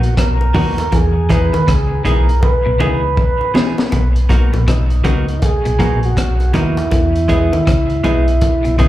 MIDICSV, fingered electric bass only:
0, 0, Header, 1, 2, 480
1, 0, Start_track
1, 0, Key_signature, 5, "major"
1, 0, Tempo, 749344
1, 593, Time_signature, 4, 2, 24, 8
1, 5690, End_track
2, 0, Start_track
2, 0, Title_t, "Fingered electric bass"
2, 0, Program_c, 0, 33
2, 0, Note_on_c, 0, 34, 89
2, 94, Note_off_c, 0, 34, 0
2, 115, Note_on_c, 0, 35, 92
2, 331, Note_off_c, 0, 35, 0
2, 354, Note_on_c, 0, 39, 93
2, 487, Note_off_c, 0, 39, 0
2, 597, Note_on_c, 0, 40, 103
2, 957, Note_off_c, 0, 40, 0
2, 989, Note_on_c, 0, 39, 86
2, 1069, Note_off_c, 0, 39, 0
2, 1080, Note_on_c, 0, 37, 90
2, 1294, Note_off_c, 0, 37, 0
2, 1317, Note_on_c, 0, 35, 91
2, 1533, Note_off_c, 0, 35, 0
2, 1710, Note_on_c, 0, 35, 88
2, 1790, Note_off_c, 0, 35, 0
2, 1803, Note_on_c, 0, 37, 96
2, 2016, Note_off_c, 0, 37, 0
2, 2518, Note_on_c, 0, 35, 102
2, 2878, Note_off_c, 0, 35, 0
2, 2911, Note_on_c, 0, 34, 79
2, 2990, Note_off_c, 0, 34, 0
2, 3001, Note_on_c, 0, 35, 101
2, 3215, Note_off_c, 0, 35, 0
2, 3237, Note_on_c, 0, 37, 90
2, 3453, Note_off_c, 0, 37, 0
2, 3629, Note_on_c, 0, 35, 84
2, 3709, Note_off_c, 0, 35, 0
2, 3719, Note_on_c, 0, 34, 86
2, 3934, Note_off_c, 0, 34, 0
2, 3955, Note_on_c, 0, 35, 85
2, 4172, Note_off_c, 0, 35, 0
2, 4194, Note_on_c, 0, 39, 98
2, 4328, Note_off_c, 0, 39, 0
2, 4436, Note_on_c, 0, 40, 102
2, 4797, Note_off_c, 0, 40, 0
2, 4828, Note_on_c, 0, 39, 81
2, 4909, Note_off_c, 0, 39, 0
2, 4917, Note_on_c, 0, 37, 89
2, 5133, Note_off_c, 0, 37, 0
2, 5155, Note_on_c, 0, 35, 87
2, 5372, Note_off_c, 0, 35, 0
2, 5550, Note_on_c, 0, 35, 84
2, 5630, Note_off_c, 0, 35, 0
2, 5636, Note_on_c, 0, 37, 86
2, 5690, Note_off_c, 0, 37, 0
2, 5690, End_track
0, 0, End_of_file